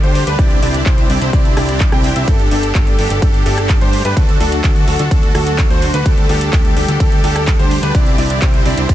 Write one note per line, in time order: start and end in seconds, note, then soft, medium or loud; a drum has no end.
0.00 0.25 D2 loud
0.00 6.02 D3 medium
0.00 2.24 G3 medium
0.00 0.35 A3 medium
0.00 0.24 D4 medium
0.00 0.37 G4 loud
0.00 0.24 G4 medium
0.00 0.24 C5 loud
0.00 closed hi-hat soft
0.15 open hi-hat loud
0.27 0.36 D2 loud
0.27 0.37 D4 loud
0.27 0.37 G4 medium
0.27 0.37 B4 loud
0.27 closed hi-hat medium
0.39 0.60 C2 loud
0.39 0.60 C4 medium
0.39 2.26 C4 medium
0.39 0.60 D4 medium
0.39 2.26 E4 medium
0.39 0.60 E4 medium
0.39 0.60 G4 medium
0.39 0.60 D5 loud
0.39 kick loud
0.39 closed hi-hat soft
0.51 closed hi-hat soft
0.62 0.84 C2 loud
0.62 0.83 C4 medium
0.62 0.83 D4 medium
0.62 0.83 E4 medium
0.62 0.83 G4 medium
0.62 0.83 D5 medium
0.62 open hi-hat loud
0.74 closed hi-hat soft
0.86 1.07 C2 medium
0.86 1.07 C4 medium
0.86 1.07 D4 medium
0.86 1.07 E4 medium
0.86 1.07 C5 medium
0.86 kick loud
0.86 clap loud
0.86 closed hi-hat soft
0.98 closed hi-hat soft
1.10 1.19 C2 loud
1.10 1.20 C4 medium
1.10 1.20 D4 medium
1.10 1.20 E4 medium
1.10 1.20 G4 medium
1.10 1.20 D5 medium
1.10 open hi-hat medium
1.21 1.31 C2 loud
1.21 1.30 C4 medium
1.21 1.30 D4 medium
1.21 1.30 E4 medium
1.21 1.30 G4 medium
1.21 1.30 C5 medium
1.21 closed hi-hat soft
1.33 1.55 C2 medium
1.33 1.54 C4 medium
1.33 1.54 D4 medium
1.33 1.54 E4 medium
1.33 1.54 G4 medium
1.33 1.54 D5 medium
1.33 kick loud
1.33 closed hi-hat soft
1.45 closed hi-hat soft
1.57 1.90 C2 loud
1.57 1.89 C4 loud
1.57 1.89 D4 medium
1.57 1.89 E4 medium
1.57 1.89 G4 medium
1.57 1.89 D5 loud
1.57 1.90 D5 loud
1.57 cross-stick medium
1.57 open hi-hat loud
1.69 closed hi-hat soft
1.80 kick loud
1.80 clap loud
1.80 closed hi-hat medium
1.92 2.14 C2 medium
1.92 2.13 C4 loud
1.92 2.13 D4 medium
1.92 2.13 E4 medium
1.92 2.13 G4 medium
1.92 2.13 G5 loud
1.92 cross-stick medium
1.92 closed hi-hat soft
2.04 open hi-hat loud
2.16 2.25 C2 loud
2.16 2.26 C4 loud
2.16 2.26 D4 medium
2.16 2.26 E4 medium
2.16 2.26 G4 medium
2.16 2.26 E5 loud
2.16 closed hi-hat soft
2.28 2.49 G1 loud
2.28 4.15 G3 medium
2.28 7.91 A3 medium
2.28 2.49 D4 medium
2.28 4.15 G4 medium
2.28 2.49 A4 loud
2.28 kick loud
2.28 closed hi-hat soft
2.28 ride medium
2.39 closed hi-hat soft
2.51 2.73 G1 loud
2.51 2.72 D4 medium
2.51 2.72 G4 medium
2.51 2.72 A4 loud
2.51 2.72 A4 medium
2.51 open hi-hat loud
2.63 closed hi-hat medium
2.75 2.96 G1 loud
2.75 2.96 G4 medium
2.75 2.96 A4 medium
2.75 kick loud
2.75 clap loud
2.75 closed hi-hat soft
2.75 ride medium
2.87 closed hi-hat soft
2.99 3.08 G1 loud
2.99 3.09 D4 medium
2.99 3.09 G4 medium
2.99 3.09 A4 medium
2.99 open hi-hat medium
3.10 3.20 G1 loud
3.10 3.19 D4 medium
3.10 3.19 G4 medium
3.10 3.19 A4 medium
3.10 closed hi-hat soft
3.22 3.44 G1 medium
3.22 3.43 D4 medium
3.22 3.43 G4 medium
3.22 3.43 A4 medium
3.22 kick loud
3.22 closed hi-hat medium
3.22 ride medium
3.34 closed hi-hat soft
3.46 3.79 G1 medium
3.46 3.78 D4 medium
3.46 3.78 G4 medium
3.46 3.78 A4 loud
3.46 3.79 A4 loud
3.46 open hi-hat loud
3.58 cross-stick medium
3.58 closed hi-hat medium
3.69 kick loud
3.69 clap loud
3.69 closed hi-hat medium
3.69 ride medium
3.81 4.03 G2 medium
3.81 4.02 D4 loud
3.81 4.02 G4 medium
3.81 4.02 C5 loud
3.81 closed hi-hat soft
3.93 open hi-hat loud
4.05 4.14 G2 medium
4.05 4.15 D4 loud
4.05 4.15 G4 medium
4.05 4.15 B4 loud
4.05 closed hi-hat soft
4.17 4.38 D2 loud
4.17 6.04 F#3 medium
4.17 4.37 D4 medium
4.17 4.38 F#4 medium
4.17 6.04 F#4 medium
4.17 4.37 A4 loud
4.17 4.38 A4 loud
4.17 kick loud
4.17 closed hi-hat medium
4.17 ride medium
4.29 closed hi-hat soft
4.40 4.62 D2 medium
4.40 4.61 D4 medium
4.40 4.61 F#4 medium
4.40 4.61 A4 loud
4.40 4.61 A4 medium
4.40 open hi-hat loud
4.52 closed hi-hat medium
4.64 4.85 D2 loud
4.64 4.85 D4 medium
4.64 4.85 A4 medium
4.64 kick loud
4.64 clap loud
4.64 closed hi-hat soft
4.64 ride medium
4.76 closed hi-hat soft
4.88 4.97 D2 medium
4.88 4.98 D4 medium
4.88 4.98 F#4 medium
4.88 4.98 A4 medium
4.88 open hi-hat medium
4.99 5.09 D2 loud
4.99 5.08 D4 medium
4.99 5.08 F#4 medium
4.99 5.08 A4 medium
4.99 closed hi-hat medium
5.11 5.33 D2 loud
5.11 5.32 D4 medium
5.11 5.32 F#4 medium
5.11 5.32 A4 medium
5.11 kick loud
5.11 closed hi-hat medium
5.11 ride medium
5.23 closed hi-hat soft
5.35 5.68 D2 loud
5.35 5.67 D4 loud
5.35 5.67 F#4 medium
5.35 5.67 A4 loud
5.35 cross-stick medium
5.35 open hi-hat loud
5.47 closed hi-hat medium
5.58 kick loud
5.58 clap loud
5.58 closed hi-hat medium
5.58 ride medium
5.70 5.92 D2 loud
5.70 5.91 D4 medium
5.70 5.91 F#4 medium
5.70 5.91 C5 loud
5.70 closed hi-hat soft
5.82 open hi-hat medium
5.94 6.03 D2 loud
5.94 6.04 D4 loud
5.94 6.04 F#4 medium
5.94 6.04 B4 loud
5.94 closed hi-hat medium
6.06 6.27 D2 loud
6.06 8.95 D3 medium
6.06 8.95 G3 medium
6.06 6.27 D4 medium
6.06 7.93 G4 medium
6.06 6.27 G4 medium
6.06 6.27 A4 loud
6.06 kick loud
6.06 closed hi-hat medium
6.06 ride medium
6.17 closed hi-hat soft
6.29 6.51 D2 loud
6.29 6.50 D4 medium
6.29 6.50 G4 medium
6.29 6.50 A4 loud
6.29 6.50 A4 medium
6.29 open hi-hat loud
6.41 closed hi-hat medium
6.53 6.74 D2 loud
6.53 kick loud
6.53 clap loud
6.53 closed hi-hat medium
6.53 ride medium
6.65 closed hi-hat soft
6.77 6.86 D2 medium
6.77 6.87 D4 medium
6.77 6.87 G4 medium
6.77 6.87 A4 medium
6.77 open hi-hat medium
6.88 6.98 D2 loud
6.88 6.97 D4 medium
6.88 6.97 G4 medium
6.88 6.97 A4 medium
6.88 closed hi-hat medium
7.00 7.21 D2 loud
7.00 7.21 D4 medium
7.00 7.21 G4 medium
7.00 7.21 A4 medium
7.00 kick loud
7.00 closed hi-hat medium
7.00 ride medium
7.12 closed hi-hat soft
7.24 7.57 D2 loud
7.24 7.56 D4 loud
7.24 7.56 G4 medium
7.24 7.56 A4 loud
7.24 open hi-hat loud
7.36 cross-stick medium
7.36 closed hi-hat medium
7.47 kick loud
7.47 clap loud
7.47 closed hi-hat medium
7.47 ride medium
7.59 7.81 D2 loud
7.59 7.80 D4 medium
7.59 7.80 G4 medium
7.59 7.80 C5 loud
7.59 closed hi-hat soft
7.71 open hi-hat medium
7.83 7.92 D2 medium
7.83 7.93 D4 loud
7.83 7.93 G4 medium
7.83 7.93 B4 loud
7.83 closed hi-hat medium
7.94 8.16 C2 loud
7.94 8.15 C4 medium
7.94 8.95 C4 medium
7.94 8.15 D4 medium
7.94 8.15 E4 medium
7.94 8.95 E4 medium
7.94 8.15 D5 loud
7.94 8.16 D5 loud
7.94 kick loud
7.94 closed hi-hat medium
7.94 ride medium
8.06 closed hi-hat soft
8.18 8.40 C2 loud
8.18 8.39 C4 medium
8.18 8.39 D4 medium
8.18 8.39 E4 medium
8.18 8.39 G4 medium
8.18 8.39 D5 loud
8.18 8.39 D5 medium
8.18 open hi-hat loud
8.30 closed hi-hat medium
8.42 8.63 C2 loud
8.42 8.63 C4 medium
8.42 8.63 D4 medium
8.42 8.63 E4 medium
8.42 8.63 G4 medium
8.42 8.63 C5 medium
8.42 kick loud
8.42 clap loud
8.42 closed hi-hat medium
8.42 ride medium
8.54 closed hi-hat soft
8.66 8.75 C2 loud
8.66 8.76 C4 medium
8.66 8.76 D4 medium
8.66 8.76 E4 medium
8.66 8.76 G4 medium
8.66 8.76 D5 medium
8.66 open hi-hat medium
8.77 8.87 C2 loud
8.77 8.86 C4 medium
8.77 8.86 D4 medium
8.77 8.86 E4 medium
8.77 8.86 G4 medium
8.77 8.86 C5 medium
8.77 closed hi-hat medium
8.89 8.95 C2 loud
8.89 8.95 C4 medium
8.89 8.95 D4 medium
8.89 8.95 E4 medium
8.89 8.95 G4 medium
8.89 8.95 D5 medium
8.89 kick loud
8.89 closed hi-hat medium
8.89 ride medium